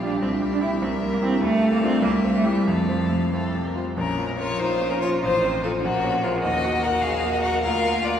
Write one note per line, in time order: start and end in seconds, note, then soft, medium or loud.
0.00 0.21 A#1 soft
0.00 0.15 G3 soft
0.00 0.20 D4 medium
0.00 0.20 F4 soft
0.00 0.83 G4 medium
0.00 0.21 G4 soft
0.00 0.19 F5 soft
0.21 0.81 C2 medium
0.21 0.29 C4 medium
0.21 1.41 E5 medium
0.42 0.74 G3 soft
0.52 0.61 D4 medium
0.61 0.69 E4 medium
0.61 0.80 E4 soft
0.61 0.80 G4 soft
0.82 1.41 C2 medium
0.82 0.90 C4 medium
0.82 1.43 A#4 medium
1.02 1.34 A#3 medium
1.13 1.17 A#3 medium
1.21 1.40 C4 medium
1.21 1.40 E4 soft
1.21 1.41 G4 soft
1.41 2.01 D2 medium
1.41 1.71 A3 loud
1.41 2.05 A4 medium
1.41 2.05 F5 medium
1.62 1.95 A3 medium
1.73 1.82 A#3 medium
1.83 2.02 C4 medium
1.83 2.02 D4 soft
1.83 2.02 F4 medium
2.02 2.66 C2 medium
2.02 2.10 A#3 loud
2.02 2.68 G4 medium
2.02 2.69 E5 medium
2.24 2.59 C4 soft
2.34 2.46 A3 medium
2.45 2.66 G3 medium
2.45 2.65 E4 soft
2.45 2.66 G4 medium
2.66 3.93 F2 medium
2.66 3.31 F3 medium
2.66 3.28 A4 medium
2.66 3.76 F5 medium
2.89 3.24 C4 soft
3.10 3.45 C3 soft
3.33 3.68 C4 soft
3.33 3.68 A4 medium
3.54 3.89 C3 soft
3.67 3.76 A#4 medium
3.76 3.97 F4 soft
3.76 3.85 C5 medium
3.97 5.18 A#1 medium
3.97 4.36 C#4 medium
3.97 4.36 A#4 medium
4.19 4.51 F4 medium
4.39 4.61 F4 medium
4.39 4.72 A#4 medium
4.39 4.61 C#5 medium
4.59 4.90 D#4 medium
4.59 5.23 F4 medium
4.59 4.93 F4 soft
4.59 4.91 C5 medium
4.82 5.14 C#4 medium
4.90 4.95 C#4 medium
4.90 5.01 A#4 medium
5.00 5.21 F4 medium
5.00 5.09 C#5 medium
5.04 5.23 F4 soft
5.21 5.82 A1 medium
5.21 5.83 D#4 medium
5.21 5.62 F4 medium
5.21 5.61 C5 medium
5.44 5.76 C4 medium
5.63 5.71 C4 medium
5.63 5.82 F4 soft
5.63 5.71 A4 medium
5.81 6.42 A#1 medium
5.81 6.22 A#3 medium
5.81 6.42 C#4 medium
5.81 6.25 F#4 medium
6.04 6.35 C#4 soft
6.24 6.44 G#3 medium
6.24 6.41 F4 medium
6.24 6.41 F4 soft
6.24 6.41 A#4 medium
6.42 7.60 D#2 medium
6.42 6.84 F#4 medium
6.42 7.61 F#4 medium
6.42 6.85 D#5 medium
6.65 6.96 F#4 medium
6.83 7.03 A#4 medium
6.83 7.16 A#4 soft
6.83 7.03 F#5 medium
7.01 7.36 F#4 soft
7.01 7.32 G#4 medium
7.01 7.35 F5 medium
7.24 7.56 A#3 medium
7.32 7.41 F#4 medium
7.32 7.42 D#5 medium
7.42 7.65 F#4 medium
7.42 7.62 A#4 medium
7.42 7.62 F#5 medium
7.62 8.20 D2 medium
7.62 8.20 F4 medium
7.62 8.04 A#4 medium
7.62 8.06 F5 medium
7.84 8.17 A#3 medium
8.02 8.20 F4 medium
8.02 8.20 F4 soft
8.02 8.20 A#4 soft
8.02 8.20 D5 medium